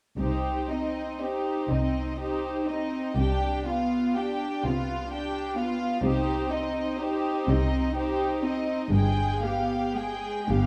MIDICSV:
0, 0, Header, 1, 6, 480
1, 0, Start_track
1, 0, Key_signature, -3, "minor"
1, 0, Tempo, 1020408
1, 92, Time_signature, 6, 3, 24, 8
1, 571, Tempo, 983607
1, 2011, Tempo, 936037
1, 2971, Tempo, 963082
1, 4411, Tempo, 1050788
1, 5205, End_track
2, 0, Start_track
2, 0, Title_t, "Violin section"
2, 0, Program_c, 0, 48
2, 95, Note_on_c, 0, 72, 29
2, 318, Note_off_c, 0, 72, 0
2, 333, Note_on_c, 0, 75, 31
2, 571, Note_off_c, 0, 75, 0
2, 572, Note_on_c, 0, 72, 28
2, 816, Note_off_c, 0, 72, 0
2, 817, Note_on_c, 0, 75, 34
2, 1055, Note_off_c, 0, 75, 0
2, 1057, Note_on_c, 0, 72, 31
2, 1274, Note_off_c, 0, 72, 0
2, 1289, Note_on_c, 0, 75, 30
2, 1526, Note_on_c, 0, 79, 35
2, 1529, Note_off_c, 0, 75, 0
2, 1752, Note_off_c, 0, 79, 0
2, 1769, Note_on_c, 0, 77, 36
2, 2008, Note_on_c, 0, 79, 31
2, 2011, Note_off_c, 0, 77, 0
2, 2257, Note_on_c, 0, 77, 37
2, 2258, Note_off_c, 0, 79, 0
2, 2499, Note_off_c, 0, 77, 0
2, 2502, Note_on_c, 0, 79, 40
2, 2720, Note_off_c, 0, 79, 0
2, 2741, Note_on_c, 0, 77, 37
2, 2973, Note_on_c, 0, 72, 45
2, 2975, Note_off_c, 0, 77, 0
2, 3193, Note_off_c, 0, 72, 0
2, 3209, Note_on_c, 0, 75, 42
2, 3451, Note_off_c, 0, 75, 0
2, 3452, Note_on_c, 0, 72, 38
2, 3690, Note_on_c, 0, 75, 45
2, 3692, Note_off_c, 0, 72, 0
2, 3928, Note_off_c, 0, 75, 0
2, 3936, Note_on_c, 0, 72, 39
2, 4154, Note_off_c, 0, 72, 0
2, 4176, Note_on_c, 0, 75, 38
2, 4415, Note_off_c, 0, 75, 0
2, 4415, Note_on_c, 0, 79, 44
2, 4629, Note_off_c, 0, 79, 0
2, 4647, Note_on_c, 0, 77, 40
2, 4884, Note_off_c, 0, 77, 0
2, 4885, Note_on_c, 0, 79, 36
2, 5129, Note_off_c, 0, 79, 0
2, 5129, Note_on_c, 0, 77, 37
2, 5205, Note_off_c, 0, 77, 0
2, 5205, End_track
3, 0, Start_track
3, 0, Title_t, "Violin section"
3, 0, Program_c, 1, 48
3, 91, Note_on_c, 1, 67, 32
3, 316, Note_off_c, 1, 67, 0
3, 329, Note_on_c, 1, 63, 30
3, 568, Note_on_c, 1, 67, 32
3, 570, Note_off_c, 1, 63, 0
3, 808, Note_on_c, 1, 63, 32
3, 814, Note_off_c, 1, 67, 0
3, 1049, Note_on_c, 1, 67, 29
3, 1050, Note_off_c, 1, 63, 0
3, 1270, Note_off_c, 1, 67, 0
3, 1289, Note_on_c, 1, 63, 33
3, 1526, Note_on_c, 1, 67, 38
3, 1529, Note_off_c, 1, 63, 0
3, 1753, Note_off_c, 1, 67, 0
3, 1776, Note_on_c, 1, 65, 32
3, 2011, Note_on_c, 1, 67, 37
3, 2014, Note_off_c, 1, 65, 0
3, 2260, Note_off_c, 1, 67, 0
3, 2264, Note_on_c, 1, 65, 38
3, 2503, Note_off_c, 1, 65, 0
3, 2505, Note_on_c, 1, 67, 36
3, 2722, Note_off_c, 1, 67, 0
3, 2737, Note_on_c, 1, 65, 38
3, 2973, Note_off_c, 1, 65, 0
3, 2973, Note_on_c, 1, 67, 45
3, 3192, Note_off_c, 1, 67, 0
3, 3206, Note_on_c, 1, 63, 39
3, 3444, Note_on_c, 1, 67, 41
3, 3449, Note_off_c, 1, 63, 0
3, 3688, Note_off_c, 1, 67, 0
3, 3696, Note_on_c, 1, 63, 47
3, 3928, Note_on_c, 1, 67, 44
3, 3931, Note_off_c, 1, 63, 0
3, 4150, Note_off_c, 1, 67, 0
3, 4165, Note_on_c, 1, 63, 37
3, 4411, Note_off_c, 1, 63, 0
3, 4416, Note_on_c, 1, 68, 42
3, 4629, Note_off_c, 1, 68, 0
3, 4645, Note_on_c, 1, 67, 38
3, 4883, Note_off_c, 1, 67, 0
3, 4883, Note_on_c, 1, 68, 38
3, 5128, Note_off_c, 1, 68, 0
3, 5128, Note_on_c, 1, 67, 38
3, 5205, Note_off_c, 1, 67, 0
3, 5205, End_track
4, 0, Start_track
4, 0, Title_t, "Viola section"
4, 0, Program_c, 2, 48
4, 95, Note_on_c, 2, 63, 30
4, 318, Note_off_c, 2, 63, 0
4, 335, Note_on_c, 2, 60, 30
4, 572, Note_off_c, 2, 60, 0
4, 574, Note_on_c, 2, 63, 30
4, 812, Note_on_c, 2, 60, 31
4, 817, Note_off_c, 2, 63, 0
4, 1048, Note_on_c, 2, 63, 31
4, 1052, Note_off_c, 2, 60, 0
4, 1270, Note_off_c, 2, 63, 0
4, 1287, Note_on_c, 2, 60, 31
4, 1526, Note_on_c, 2, 62, 34
4, 1528, Note_off_c, 2, 60, 0
4, 1753, Note_off_c, 2, 62, 0
4, 1766, Note_on_c, 2, 59, 33
4, 2007, Note_on_c, 2, 62, 30
4, 2009, Note_off_c, 2, 59, 0
4, 2255, Note_on_c, 2, 59, 36
4, 2258, Note_off_c, 2, 62, 0
4, 2490, Note_on_c, 2, 62, 39
4, 2498, Note_off_c, 2, 59, 0
4, 2714, Note_off_c, 2, 62, 0
4, 2729, Note_on_c, 2, 59, 34
4, 2969, Note_off_c, 2, 59, 0
4, 2970, Note_on_c, 2, 63, 43
4, 3191, Note_off_c, 2, 63, 0
4, 3208, Note_on_c, 2, 60, 36
4, 3447, Note_on_c, 2, 63, 40
4, 3450, Note_off_c, 2, 60, 0
4, 3689, Note_off_c, 2, 63, 0
4, 3690, Note_on_c, 2, 60, 39
4, 3926, Note_on_c, 2, 63, 39
4, 3928, Note_off_c, 2, 60, 0
4, 4149, Note_off_c, 2, 63, 0
4, 4165, Note_on_c, 2, 60, 40
4, 4407, Note_on_c, 2, 56, 40
4, 4411, Note_off_c, 2, 60, 0
4, 4625, Note_off_c, 2, 56, 0
4, 4640, Note_on_c, 2, 59, 37
4, 4879, Note_on_c, 2, 56, 32
4, 4881, Note_off_c, 2, 59, 0
4, 5126, Note_off_c, 2, 56, 0
4, 5126, Note_on_c, 2, 59, 39
4, 5205, Note_off_c, 2, 59, 0
4, 5205, End_track
5, 0, Start_track
5, 0, Title_t, "Cello section"
5, 0, Program_c, 3, 48
5, 84, Note_on_c, 3, 48, 39
5, 719, Note_off_c, 3, 48, 0
5, 809, Note_on_c, 3, 48, 46
5, 1433, Note_off_c, 3, 48, 0
5, 1521, Note_on_c, 3, 48, 46
5, 2161, Note_off_c, 3, 48, 0
5, 2254, Note_on_c, 3, 48, 53
5, 2877, Note_off_c, 3, 48, 0
5, 2966, Note_on_c, 3, 48, 61
5, 3597, Note_off_c, 3, 48, 0
5, 3688, Note_on_c, 3, 48, 60
5, 4316, Note_off_c, 3, 48, 0
5, 4406, Note_on_c, 3, 43, 59
5, 5033, Note_off_c, 3, 43, 0
5, 5127, Note_on_c, 3, 43, 53
5, 5205, Note_off_c, 3, 43, 0
5, 5205, End_track
6, 0, Start_track
6, 0, Title_t, "Double bass section"
6, 0, Program_c, 4, 48
6, 88, Note_on_c, 4, 36, 43
6, 721, Note_off_c, 4, 36, 0
6, 812, Note_on_c, 4, 36, 42
6, 1435, Note_off_c, 4, 36, 0
6, 1524, Note_on_c, 4, 36, 46
6, 2163, Note_off_c, 4, 36, 0
6, 2255, Note_on_c, 4, 36, 48
6, 2878, Note_off_c, 4, 36, 0
6, 2965, Note_on_c, 4, 36, 53
6, 3596, Note_off_c, 4, 36, 0
6, 3688, Note_on_c, 4, 36, 56
6, 4316, Note_off_c, 4, 36, 0
6, 4411, Note_on_c, 4, 31, 55
6, 5035, Note_off_c, 4, 31, 0
6, 5129, Note_on_c, 4, 31, 44
6, 5205, Note_off_c, 4, 31, 0
6, 5205, End_track
0, 0, End_of_file